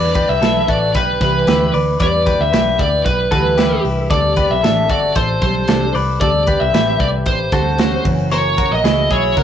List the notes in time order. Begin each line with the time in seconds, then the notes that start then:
Already playing: E2 G3 D4 E4 B4 D5
0.15 G4 B4, kick, closed hi-hat
0.28 C2 D4 E4 B4 E5
0.41 B1 E4 A4, snare, closed hi-hat
0.54 D4 E4 B4
0.68 A1 F#4 A4 D5, kick, closed hi-hat
0.94 B1 G4 B4, kick, closed hi-hat
1.21 C2 E3 G3 D4 E4 B4, kick, snare, closed hi-hat
1.47 D2 E4 G4, snare, closed hi-hat
1.60 D4 E4 B4
1.74 D2 B4 D5, open hi-hat
2.00 E2 G3 D4 E4 B4 D5, kick, closed hi-hat
2.26 G4 B4, kick, closed hi-hat
2.39 D2 D4 E4 B4 E5
2.53 B1 G4 B4, snare, closed hi-hat
2.66 D4 E4 B4
2.79 D2 D5, kick, closed hi-hat
3.06 B1 B4, kick, closed hi-hat
3.31 D2 E3 G3 D4 E4 F#4 A4 B4, kick, snare, closed hi-hat
3.58 E4 G4, snare, closed hi-hat
3.71 D4 E4 B4
3.85 C2, open hi-hat
4.10 D2 G3 C4 G4 A4 D5, kick, closed hi-hat
4.36 G4 B4, kick, closed hi-hat
4.50 B1 C4 G4 A4 E5
4.63 A1 D4 A4, snare, closed hi-hat
4.76 C4 G4 A4
4.89 G1 F#4 A4 D5, kick, closed hi-hat
5.15 A1 A4 C5, kick, closed hi-hat
5.42 B1 D3 G3 C4 G4 A4 C5, kick, closed hi-hat
5.68 C2 D4 A4, snare, closed hi-hat
5.81 C4 G4 A4
5.95 C2 B4 D5, open hi-hat
6.20 D2 G3 C4 G4 A4 D5, kick, closed hi-hat
6.47 G4 B4, kick, closed hi-hat
6.60 C2 C4 G4 A4 E5
6.74 A1 G4 B4, snare, closed hi-hat
6.86 C4 G4 A4
7.00 C2 D5, kick, closed hi-hat
7.26 A1 C5, kick, closed hi-hat
7.52 D2 D3 G3 C4 F#4 G4 A4, kick, snare, closed hi-hat
7.78 C#4 F#4, snare, closed hi-hat
7.91 C4 G4 A4
8.04 F#1 F#2 C#3 E3 A#3 C#4 F#4, kick, open hi-hat
8.31 A#4 C#5, closed hi-hat
8.58 F#4 A#4, kick, closed hi-hat
8.71 A#1 E3 A#3 C#4 F#4 D#5
8.84 C#2 E4 G#4, snare, closed hi-hat
8.96 E3 A#3 C#4 F#4
9.10 B1 E4 G#4 C#5, kick, closed hi-hat
9.37 C#2 F#4 A#4, kick, closed hi-hat